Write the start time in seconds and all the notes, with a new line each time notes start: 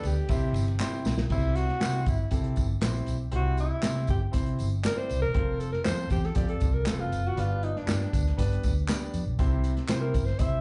Already playing: B3 D4 G4 B4 D5
0.03 D2 G4, ride, tambourine
0.29 C3 C4 E4 G4 C5 E5, kick, ride, tambourine
0.53 G1, ride, tambourine
0.68 ride
0.79 C4 E4 G4 C5 G5, snare, clap, tambourine
1.05 B1, snare, tambourine
1.18 B1, snare
1.30 C2 C3 C4 E4 G4 C5, kick, crash, tambourine
1.55 F#4, closed hi-hat, tambourine
1.69 snare
1.80 C3 C4 E4 G4 C5, snare, clap, closed hi-hat, tambourine
2.06 G1 E4, kick, closed hi-hat, tambourine
2.31 C3 C4 E4 G4 A4, kick, closed hi-hat, tambourine
2.44 closed hi-hat
2.56 G1, kick, closed hi-hat, tambourine
2.81 A#1 C4 E4 G4 C5, snare, clap, closed hi-hat, tambourine
3.06 B1, closed hi-hat, tambourine
3.32 C2 C3 C4 E4 G4 C5, closed hi-hat
3.36 F#4
3.57 E4, closed hi-hat, tambourine
3.82 C3 C4 E4 G4 C5, snare, clap, closed hi-hat, tambourine
3.96 snare
4.07 G1 G4, kick, closed hi-hat, tambourine
4.31 C3 C4 E4 G4 C5, kick, closed hi-hat, tambourine
4.46 closed hi-hat
4.59 G1, closed hi-hat, tambourine
4.83 C4 E4 G4 A#4 D5, snare, clap, closed hi-hat, tambourine
4.97 C5
5.10 C2, closed hi-hat, tambourine
5.22 E1 A#4
5.34 F1 C4 F4 A4 C5, kick, closed hi-hat
5.60 A4, closed hi-hat, tambourine
5.73 A#4, snare
5.84 F2 C4 F4 A4 C5, snare, clap, closed hi-hat, tambourine
6.10 E2 G4, kick, closed hi-hat, tambourine
6.24 A4, snare
6.35 F2 C4 F4 G4 A4 D5, kick, closed hi-hat, tambourine
6.48 A4, closed hi-hat
6.60 C2, kick, closed hi-hat, tambourine
6.74 A#4
6.85 F1 C4 F4 A4 B4, snare, clap, closed hi-hat, tambourine
7.00 F4
7.12 F#1, closed hi-hat, tambourine
7.27 F#4
7.36 G1 G2 B3 D4 F4 G4 B4, closed hi-hat, tambourine
7.63 D#4, closed hi-hat
7.76 D4, snare
7.86 G2 B3 D4 G4 B4, snare, clap, closed hi-hat, tambourine
8.01 snare
8.13 D2, kick, closed hi-hat, tambourine
8.27 snare
8.37 G2 B3 D4 G4 B4, kick, closed hi-hat, tambourine
8.52 closed hi-hat
8.63 D2, kick, closed hi-hat, tambourine
8.88 B3 D4 G4 D5, snare, clap, closed hi-hat, tambourine
9.14 F2, closed hi-hat, tambourine
9.26 B1
9.39 C2 C3 C4 E4 G4 C5, kick, closed hi-hat, tambourine
9.64 closed hi-hat, tambourine
9.77 snare, closed hi-hat
9.88 C3 C4 E4 G4 C5, snare, clap, closed hi-hat, tambourine
10.01 A#4
10.14 G1, kick, closed hi-hat, tambourine
10.26 C5, snare
10.39 C3 C4 E4 G4 C5 E5, kick, closed hi-hat, tambourine